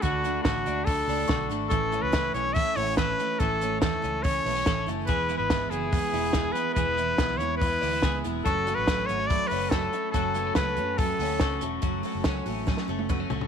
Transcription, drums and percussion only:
0.03 kick, hi-hat pedal, open hi-hat
0.24 hi-hat pedal, open hi-hat
0.45 kick, snare, hi-hat pedal, open hi-hat
0.66 hi-hat pedal, open hi-hat
0.87 kick, hi-hat pedal, open hi-hat
1.08 hi-hat pedal, open hi-hat
1.29 kick, snare, hi-hat pedal, open hi-hat
1.51 hi-hat pedal, open hi-hat
1.71 kick, hi-hat pedal, open hi-hat
1.92 hi-hat pedal, open hi-hat
2.13 kick, snare, hi-hat pedal, open hi-hat
2.35 hi-hat pedal, open hi-hat
2.56 kick, hi-hat pedal, open hi-hat
2.77 hi-hat pedal, open hi-hat
2.97 kick, snare, hi-hat pedal, open hi-hat
3.19 hi-hat pedal, open hi-hat
3.40 kick, hi-hat pedal, open hi-hat
3.61 hi-hat pedal, open hi-hat
3.82 kick, snare, hi-hat pedal, open hi-hat
4.04 hi-hat pedal, open hi-hat
4.24 kick, hi-hat pedal, open hi-hat
4.46 hi-hat pedal, open hi-hat
4.66 kick, snare, hi-hat pedal, open hi-hat
4.88 hi-hat pedal, open hi-hat
5.09 kick, hi-hat pedal, open hi-hat
5.29 hi-hat pedal, open hi-hat
5.50 kick, snare, hi-hat pedal, open hi-hat
5.72 hi-hat pedal, open hi-hat
5.92 kick, hi-hat pedal, open hi-hat
6.13 hi-hat pedal, open hi-hat
6.33 kick, snare, hi-hat pedal, open hi-hat
6.55 hi-hat pedal, open hi-hat
6.76 kick, hi-hat pedal, open hi-hat
6.98 hi-hat pedal, open hi-hat
7.18 kick, snare, hi-hat pedal, open hi-hat
7.40 hi-hat pedal, open hi-hat
7.61 kick, hi-hat pedal, open hi-hat
7.82 hi-hat pedal, open hi-hat
8.02 kick, snare, hi-hat pedal, open hi-hat
8.24 hi-hat pedal, open hi-hat
8.46 kick, hi-hat pedal, open hi-hat
8.67 hi-hat pedal, open hi-hat
8.87 kick, snare, hi-hat pedal, open hi-hat
9.09 hi-hat pedal, open hi-hat
9.30 kick, hi-hat pedal, open hi-hat
9.51 hi-hat pedal, open hi-hat
9.71 kick, snare, hi-hat pedal, open hi-hat
9.93 hi-hat pedal, open hi-hat
10.14 kick, hi-hat pedal, open hi-hat
10.34 hi-hat pedal, open hi-hat
10.55 kick, snare, hi-hat pedal, open hi-hat
10.77 hi-hat pedal, open hi-hat
10.98 kick, hi-hat pedal, open hi-hat
11.19 hi-hat pedal, open hi-hat
11.40 kick, snare, hi-hat pedal, open hi-hat
11.61 hi-hat pedal, open hi-hat
11.82 kick, closed hi-hat
12.04 open hi-hat
12.24 kick, snare, closed hi-hat
12.46 open hi-hat
12.67 kick, snare
12.77 snare
12.99 high tom
13.10 kick, mid tom
13.30 floor tom
13.41 floor tom

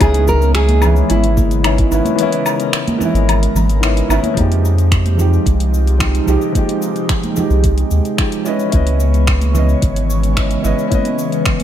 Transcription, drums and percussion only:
0.01 kick, closed hi-hat, cabasa, low woodblock
0.14 closed hi-hat, cabasa
0.28 kick, cabasa
0.42 cabasa
0.55 finger snap, closed hi-hat, cabasa
0.69 closed hi-hat, high conga, cabasa
0.82 low conga, cabasa, low woodblock
0.96 cabasa
1.10 closed hi-hat, cabasa
1.24 closed hi-hat, cabasa
1.37 kick, high conga, cabasa
1.51 closed hi-hat, cabasa
1.64 finger snap, closed hi-hat, cabasa, low woodblock
1.78 kick, closed hi-hat, cabasa
1.92 cabasa
2.05 closed hi-hat, high conga, cabasa
2.19 closed hi-hat, cabasa
2.32 closed hi-hat, cabasa
2.46 cabasa, low woodblock
2.60 closed hi-hat, cabasa
2.73 finger snap, closed hi-hat, cabasa
2.87 closed hi-hat, high conga, cabasa
3.00 low conga, cabasa
3.15 closed hi-hat, cabasa
3.29 closed hi-hat, cabasa, low woodblock
3.43 closed hi-hat, cabasa
3.55 high conga, low conga, cabasa
3.69 closed hi-hat, cabasa
3.83 finger snap, closed hi-hat, cabasa
3.97 closed hi-hat, cabasa
4.10 cabasa, low woodblock
4.23 closed hi-hat, high conga, cabasa
4.37 kick, closed hi-hat, high conga, cabasa
4.52 closed hi-hat, cabasa
4.65 cabasa
4.78 closed hi-hat, cabasa
4.92 finger snap, kick, closed hi-hat, cabasa
5.05 closed hi-hat, high conga, cabasa
5.18 low conga, cabasa
5.33 cabasa
5.46 kick, closed hi-hat, cabasa
5.60 closed hi-hat, cabasa
5.74 cabasa
5.87 closed hi-hat, cabasa
6.00 finger snap, kick, closed hi-hat, cabasa
6.15 closed hi-hat, cabasa
6.28 cabasa
6.41 cabasa
6.55 kick, closed hi-hat, high conga, cabasa
6.69 closed hi-hat, cabasa
6.82 cabasa
6.96 closed hi-hat, cabasa
7.09 finger snap, kick, closed hi-hat, cabasa
7.23 closed hi-hat, high conga, cabasa
7.36 low conga, cabasa
7.50 cabasa
7.64 kick, closed hi-hat, cabasa
7.78 closed hi-hat, cabasa
7.91 cabasa
8.05 closed hi-hat, cabasa
8.18 finger snap, kick, closed hi-hat, cabasa
8.32 closed hi-hat, cabasa
8.45 cabasa
8.59 cabasa
8.72 kick, closed hi-hat, high conga, cabasa
8.87 closed hi-hat, cabasa
9.00 cabasa
9.14 closed hi-hat, cabasa
9.27 finger snap, kick, closed hi-hat, cabasa
9.41 closed hi-hat, high conga, cabasa
9.54 low conga, cabasa
9.69 cabasa
9.82 kick, closed hi-hat, cabasa
9.96 closed hi-hat, cabasa
10.10 cabasa
10.23 closed hi-hat, cabasa
10.37 finger snap, kick, closed hi-hat, cabasa
10.51 closed hi-hat, cabasa
10.64 cabasa
10.79 cabasa
10.91 kick, closed hi-hat, high conga, cabasa
11.05 closed hi-hat, cabasa
11.18 cabasa
11.32 closed hi-hat, cabasa
11.46 finger snap, kick, closed hi-hat, cabasa
11.60 closed hi-hat, high conga, cabasa

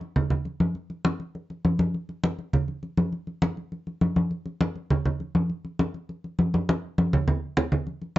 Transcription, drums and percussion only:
0.01 high conga
0.16 high conga, low conga
0.30 high conga, low conga
0.45 high conga
0.60 high conga
0.75 high conga
0.90 high conga
1.05 high conga
1.20 high conga
1.35 high conga
1.50 high conga
1.65 high conga
1.79 high conga
1.94 high conga
2.09 high conga
2.24 high conga
2.39 high conga
2.53 high conga, low conga
2.68 high conga
2.83 high conga
2.97 high conga
3.13 high conga
3.27 high conga
3.42 high conga
3.57 high conga
3.72 high conga
3.87 high conga
4.01 high conga
4.16 high conga
4.31 high conga
4.46 high conga
4.61 high conga
4.76 high conga
4.90 high conga, low conga
5.05 high conga, low conga
5.20 high conga
5.35 high conga
5.50 high conga
5.65 high conga
5.79 high conga
5.94 high conga
6.09 high conga
6.24 high conga
6.39 high conga
6.54 high conga
6.69 high conga
6.98 high conga
7.13 low conga
7.28 low conga
7.57 low conga
7.72 low conga
7.87 high conga
8.02 high conga

